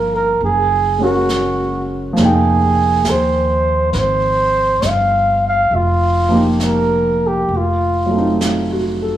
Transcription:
0.00 0.37 G1 medium
0.00 0.41 F3 soft
0.00 0.41 A#3 soft
0.00 0.41 D#4 soft
0.00 0.42 G4 medium
0.00 0.14 A#4 medium
0.16 0.41 A#4 medium
0.41 2.13 F#1 medium
0.41 1.04 G#4 medium
0.41 brush sweep soft
0.98 2.16 G#3 soft
0.98 2.17 C#4 soft
0.98 2.18 F#4 soft
1.03 1.89 F#4 medium
1.03 2.19 A#4 soft
1.29 snare soft
1.29 hi-hat pedal soft
2.13 3.00 F1 medium
2.13 5.69 F3 soft
2.13 5.71 A#3 soft
2.13 brush sweep soft
2.13 snare soft
2.21 5.73 D#4 soft
2.21 3.11 G#4 medium
2.21 5.75 G5 medium
3.04 3.89 D#2 medium
3.04 snare soft
3.04 hi-hat pedal soft
3.10 3.91 C5 medium
3.93 4.78 G#1 medium
3.93 4.00 B4 medium
3.93 brush sweep soft
3.93 snare soft
3.98 4.88 C5 medium
4.82 5.67 G1 medium
4.82 snare soft
4.82 hi-hat pedal soft
4.87 5.44 F5 medium
5.48 5.77 F5 medium
5.70 7.45 F1 medium
5.70 brush sweep soft
5.76 6.44 F4 medium
6.29 7.48 F3 soft
6.29 7.49 A#3 soft
6.29 7.50 D#4 soft
6.34 7.51 G4 soft
6.60 snare soft
6.60 hi-hat pedal soft
6.66 7.29 A#4 medium
7.27 7.58 G4 medium
7.49 9.17 F1 medium
7.49 brush sweep soft
7.57 8.45 F4 medium
8.06 9.17 F#3 soft
8.11 9.17 A3 soft
8.11 9.17 C4 soft
8.17 9.17 D#4 soft
8.41 8.99 F4 soft
8.41 snare soft
8.41 hi-hat pedal medium
8.72 9.17 F#4 soft
9.02 9.17 A4 soft

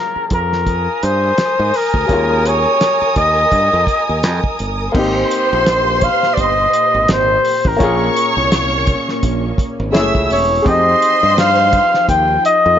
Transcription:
0.00 2.05 A#3 medium
0.00 2.06 C#4 medium
0.00 2.07 F4 medium
0.00 2.04 G#4 medium
0.00 0.28 A#4 medium
0.16 muted fingered electric bass stroke soft
0.30 0.87 F2 medium
0.30 1.05 A#4 medium
0.30 kick medium
0.30 closed hi-hat medium
0.53 snare soft
0.67 4.91 A#4 medium
0.67 4.91 G#5 medium
0.67 4.91 D#6 medium
0.67 kick medium
0.67 closed hi-hat medium
1.03 1.31 G2 medium
1.03 1.78 C5 medium
1.03 closed hi-hat medium
1.38 muted fingered electric bass stroke soft
1.38 snare loud
1.38 closed hi-hat medium
1.59 1.71 G#2 medium
1.74 2.49 A#4 medium
1.74 open hi-hat medium
1.94 2.06 D2 medium
1.94 kick loud
2.06 2.65 D#2 loud
2.06 2.15 G3 medium
2.06 4.90 A#3 medium
2.06 kick loud
2.06 closed hi-hat medium
2.10 4.93 G#3 medium
2.10 4.91 C#4 medium
2.10 4.93 F4 medium
2.45 3.17 C#5 loud
2.45 closed hi-hat medium
2.81 snare loud
2.81 closed hi-hat medium
3.02 muted fingered electric bass stroke soft
3.16 3.44 D#2 loud
3.16 4.56 D#5 loud
3.16 kick medium
3.16 closed hi-hat medium
3.52 3.68 G2 medium
3.52 kick medium
3.52 closed hi-hat medium
3.73 3.85 F2 loud
3.87 kick medium
3.87 closed hi-hat medium
4.09 4.23 D#2 medium
4.23 4.40 F2 medium
4.23 snare medium
4.23 closed hi-hat medium
4.44 kick medium
4.59 4.87 G1 medium
4.59 closed hi-hat medium
4.92 5.23 G#1 loud
4.92 9.90 A#2 medium
4.92 7.75 A#3 medium
4.92 7.77 A#3 medium
4.92 7.76 C4 medium
4.92 7.77 G4 loud
4.92 7.40 C5 loud
4.92 7.40 C6 loud
4.92 kick loud
4.92 crash loud
4.96 7.77 D#4 medium
4.96 7.78 G4 medium
4.96 6.05 C5 medium
5.31 closed hi-hat medium
5.53 6.08 A#1 medium
5.66 snare loud
5.66 closed hi-hat medium
6.01 6.35 F5 loud
6.01 kick medium
6.01 closed hi-hat medium
6.23 snare soft
6.34 6.42 D5 medium
6.34 kick medium
6.34 closed hi-hat medium
6.38 6.66 G1 medium
6.38 7.10 D#5 loud
6.73 closed hi-hat medium
6.94 7.06 G#1 medium
7.08 7.37 G#1 medium
7.08 7.69 C5 loud
7.08 snare loud
7.08 closed hi-hat medium
7.45 open hi-hat medium
7.65 7.77 A1 medium
7.65 8.38 A#4 medium
7.65 kick loud
7.77 9.88 A#3 medium
7.77 9.92 A#3 medium
7.77 9.89 C#4 medium
7.77 9.92 C#4 medium
7.77 9.55 C#5 loud
7.77 9.55 C#6 loud
7.77 kick loud
7.77 closed hi-hat medium
7.81 8.08 A#1 loud
7.81 9.90 F4 medium
7.81 9.92 G#4 medium
8.16 closed hi-hat medium
8.37 8.92 C2 medium
8.52 snare loud
8.52 closed hi-hat medium
8.87 kick medium
8.87 closed hi-hat medium
9.09 snare soft
9.23 9.51 A#1 medium
9.23 kick medium
9.23 closed hi-hat medium
9.58 kick loud
9.58 closed hi-hat medium
9.80 9.94 G#1 medium
9.92 10.10 F#1 medium
9.92 10.01 G#3 medium
9.92 10.65 C#4 medium
9.92 10.66 E4 medium
9.92 10.61 G#4 medium
9.92 10.29 E5 medium
9.92 10.29 E6 loud
9.92 snare loud
9.92 closed hi-hat medium
9.99 10.68 A3 medium
10.15 10.27 C#2 medium
10.15 kick medium
10.30 10.59 E1 loud
10.30 10.69 C#5 loud
10.30 open hi-hat medium
10.62 10.94 F2 loud
10.62 12.77 F3 medium
10.62 12.75 C4 medium
10.62 12.78 D#4 medium
10.62 12.74 G#4 medium
10.62 12.77 G5 medium
10.62 kick loud
10.62 closed hi-hat medium
10.67 12.76 D#4 medium
10.67 12.77 G4 medium
10.67 12.41 C5 loud
10.67 11.38 D#5 loud
10.67 12.41 C6 loud
11.02 closed hi-hat medium
11.23 11.78 G2 medium
11.38 12.05 F5 loud
11.38 snare loud
11.38 closed hi-hat medium
11.73 kick medium
11.73 closed hi-hat medium
11.94 snare soft
12.09 12.37 D#2 medium
12.09 12.42 G5 loud
12.09 kick medium
12.09 closed hi-hat medium
12.45 12.79 D#5 loud
12.45 closed hi-hat medium
12.66 12.77 F2 medium

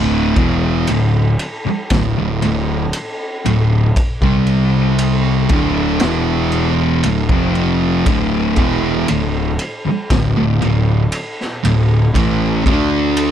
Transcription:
0.00 0.33 D1 medium
0.00 0.36 D2 medium
0.00 0.36 A2 loud
0.00 0.36 D3 loud
0.36 0.85 E1 loud
0.36 0.87 E2 medium
0.36 0.87 B2 loud
0.36 0.88 E3 loud
0.36 kick loud
0.36 ride medium
0.87 1.37 D1 medium
0.87 1.30 D2 medium
0.87 1.30 A2 medium
0.87 ride loud
1.39 ride medium
1.66 muted distorted electric guitar stroke medium
1.66 muted picked electric bass stroke soft
1.90 2.15 D1 medium
1.90 2.15 D2 medium
1.90 2.16 A2 medium
1.90 kick loud
1.90 snare loud
1.90 ride loud
2.16 2.42 D1 medium
2.16 2.41 D2 medium
2.16 2.41 A2 medium
2.42 2.91 D1 medium
2.42 2.84 D2 medium
2.42 2.84 A2 medium
2.42 ride medium
2.93 ride loud
3.45 3.94 D1 medium
3.45 3.86 D2 medium
3.45 3.86 A2 medium
3.45 ride medium
3.96 kick loud
3.96 ride loud
4.22 5.46 C2 medium
4.22 5.49 C3 loud
4.22 5.49 G3 loud
4.22 5.49 C4 medium
4.22 kick loud
4.47 ride medium
4.99 ride loud
5.49 5.98 D1 loud
5.49 6.00 D2 medium
5.49 6.00 A2 medium
5.49 6.01 D3 medium
5.49 kick loud
5.49 ride medium
6.00 7.01 E1 loud
6.00 7.03 E2 medium
6.00 7.03 B2 loud
6.00 7.03 E3 loud
6.00 snare loud
6.00 ride medium
6.52 ride medium
7.03 7.29 D1 medium
7.03 7.29 D2 medium
7.03 7.30 A2 medium
7.03 ride medium
7.29 8.02 F1 medium
7.29 8.05 F2 medium
7.29 8.05 C3 loud
7.29 8.06 F3 loud
7.29 kick loud
7.55 ride medium
8.06 8.54 D1 medium
8.06 8.56 D2 medium
8.06 8.56 A2 loud
8.06 8.56 D3 loud
8.06 kick loud
8.06 ride loud
8.56 9.05 E1 loud
8.56 9.07 E2 medium
8.56 9.07 B2 medium
8.56 9.08 E3 loud
8.56 kick medium
8.56 ride medium
9.08 9.57 D1 medium
9.08 9.50 D2 medium
9.08 9.50 A2 medium
9.08 ride medium
9.59 ride medium
9.86 muted distorted electric guitar stroke medium
9.86 muted picked electric bass stroke soft
10.10 10.34 D1 medium
10.10 10.36 D2 medium
10.10 10.36 A2 medium
10.10 kick loud
10.10 snare loud
10.10 ride medium
10.37 10.61 D1 medium
10.37 10.61 D2 medium
10.37 10.61 A2 medium
10.62 11.10 D1 medium
10.62 11.03 D2 medium
10.62 11.03 A2 medium
10.62 ride medium
11.12 ride loud
11.41 snare soft
11.65 12.12 D1 medium
11.65 12.06 D2 medium
11.65 12.06 A2 medium
11.65 ride medium
12.14 12.63 A1 loud
12.14 12.64 A2 loud
12.14 12.65 E3 loud
12.14 12.65 A3 loud
12.14 kick loud
12.14 ride loud
12.65 13.31 D2 loud
12.65 13.31 D3 medium
12.65 13.31 A3 loud
12.65 13.31 D4 loud
12.65 kick medium
12.65 ride medium
13.17 ride loud

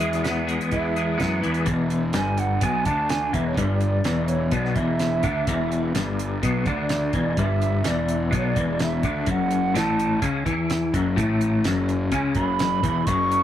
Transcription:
0.00 0.58 E2 loud
0.00 0.95 E2 medium
0.00 0.71 E3 medium
0.00 1.65 G#3 medium
0.00 0.46 G#3 medium
0.00 0.23 B3 medium
0.00 1.64 E4 medium
0.00 1.65 F#4 medium
0.00 0.49 E5 medium
0.00 closed hi-hat medium
0.13 snare soft
0.13 closed hi-hat medium
0.24 1.17 B3 medium
0.24 snare loud
0.24 closed hi-hat medium
0.47 0.95 G#3 medium
0.47 closed hi-hat medium
0.61 closed hi-hat soft
0.71 1.20 E2 medium
0.71 1.41 E3 medium
0.71 1.39 E5 loud
0.71 kick medium
0.71 closed hi-hat medium
0.96 1.68 G#3 medium
0.96 closed hi-hat medium
1.18 1.42 F#2 medium
1.18 1.67 B3 medium
1.18 kick medium
1.18 snare medium
1.18 closed hi-hat medium
1.43 1.66 E2 medium
1.43 1.67 E3 medium
1.43 closed hi-hat medium
1.54 closed hi-hat medium
1.66 2.12 E1 medium
1.66 2.14 E2 loud
1.66 kick loud
1.66 closed hi-hat medium
1.90 closed hi-hat medium
2.13 2.60 G1 medium
2.13 2.61 G2 loud
2.13 2.41 G#5 medium
2.13 snare loud
2.13 closed hi-hat medium
2.37 2.64 F#5 medium
2.37 closed hi-hat medium
2.61 2.85 B1 loud
2.61 2.85 B2 medium
2.61 2.87 G#5 loud
2.61 kick loud
2.61 closed hi-hat loud
2.85 3.31 D2 medium
2.85 3.33 D3 medium
2.85 3.11 A5 medium
2.85 kick loud
2.85 closed hi-hat medium
3.09 3.35 G#5 medium
3.09 snare medium
3.09 closed hi-hat medium
3.33 3.56 E1 medium
3.33 3.57 E2 loud
3.33 3.47 E5 medium
3.33 kick loud
3.33 closed hi-hat medium
3.47 3.58 C#5 medium
3.57 4.02 G1 loud
3.57 4.05 G2 loud
3.57 4.29 D5 loud
3.57 kick loud
3.57 closed hi-hat medium
3.81 closed hi-hat medium
4.04 4.49 E1 medium
4.04 4.52 E2 loud
4.04 snare loud
4.04 closed hi-hat medium
4.28 4.53 C#5 medium
4.28 closed hi-hat medium
4.51 4.75 B1 medium
4.51 4.76 B2 medium
4.51 4.77 D5 medium
4.51 kick medium
4.51 closed hi-hat medium
4.65 snare soft
4.75 5.21 E1 medium
4.75 5.23 E2 loud
4.75 5.95 E5 medium
4.75 kick loud
4.75 closed hi-hat medium
4.99 snare medium
4.99 closed hi-hat medium
5.23 5.46 D2 medium
5.23 5.47 D3 loud
5.23 kick loud
5.23 closed hi-hat medium
5.47 5.92 E1 medium
5.47 5.94 E2 loud
5.47 kick loud
5.47 closed hi-hat medium
5.72 closed hi-hat medium
5.95 6.40 G1 medium
5.95 6.42 G2 medium
5.95 snare loud
5.95 closed hi-hat medium
6.19 closed hi-hat medium
6.43 6.65 B1 medium
6.43 6.66 B2 loud
6.43 6.68 B4 medium
6.43 kick loud
6.43 closed hi-hat loud
6.66 7.11 D2 medium
6.66 7.14 D3 medium
6.66 7.40 D5 medium
6.66 kick loud
6.66 closed hi-hat medium
6.89 snare loud
6.89 closed hi-hat medium
7.13 7.36 E1 medium
7.13 7.37 E2 loud
7.13 kick loud
7.13 closed hi-hat medium
7.37 7.82 G1 loud
7.37 7.84 G2 loud
7.37 7.89 E5 loud
7.37 kick loud
7.37 closed hi-hat medium
7.62 closed hi-hat medium
7.84 8.30 E1 medium
7.84 8.32 E2 loud
7.84 8.34 D5 medium
7.84 snare loud
7.84 closed hi-hat medium
8.09 closed hi-hat medium
8.31 8.55 B1 loud
8.31 8.55 B2 medium
8.31 kick loud
8.31 closed hi-hat medium
8.36 8.85 D5 loud
8.56 9.01 E1 medium
8.56 9.03 E2 loud
8.56 kick loud
8.56 closed hi-hat medium
8.79 snare loud
8.79 closed hi-hat medium
8.84 9.32 E5 medium
9.03 9.26 D2 medium
9.03 9.27 D3 medium
9.03 kick loud
9.03 closed hi-hat medium
9.26 9.72 F#1 medium
9.26 9.74 F#2 loud
9.26 kick loud
9.26 closed hi-hat medium
9.31 9.78 F#5 loud
9.51 closed hi-hat medium
9.75 10.19 A1 medium
9.75 10.22 A2 loud
9.75 10.23 A5 loud
9.75 snare loud
9.75 closed hi-hat medium
9.99 closed hi-hat medium
10.22 10.44 C#2 medium
10.22 10.45 C#3 loud
10.22 kick loud
10.22 closed hi-hat loud
10.46 10.90 E2 medium
10.46 10.93 E3 medium
10.46 kick loud
10.46 closed hi-hat medium
10.70 snare loud
10.70 closed hi-hat medium
10.94 11.16 F#1 loud
10.94 11.17 F#2 loud
10.94 kick loud
10.94 closed hi-hat medium
11.16 11.61 A1 loud
11.16 11.64 A2 loud
11.16 kick loud
11.16 closed hi-hat loud
11.41 closed hi-hat medium
11.64 12.09 F#1 medium
11.64 12.12 F#2 loud
11.64 snare loud
11.64 closed hi-hat medium
11.89 closed hi-hat medium
12.12 12.34 C#2 medium
12.12 12.35 C#3 loud
12.12 12.20 G#5 medium
12.12 kick loud
12.12 closed hi-hat medium
12.35 12.80 F#1 medium
12.35 12.83 F#2 loud
12.35 13.08 B5 loud
12.35 kick loud
12.35 closed hi-hat medium
12.59 snare loud
12.59 closed hi-hat medium
12.83 13.05 E1 loud
12.83 13.06 E2 loud
12.83 kick loud
12.83 closed hi-hat medium
13.06 13.43 F#1 loud
13.06 13.43 F#2 loud
13.06 13.43 C#6 loud
13.06 kick loud
13.06 closed hi-hat medium
13.32 closed hi-hat medium

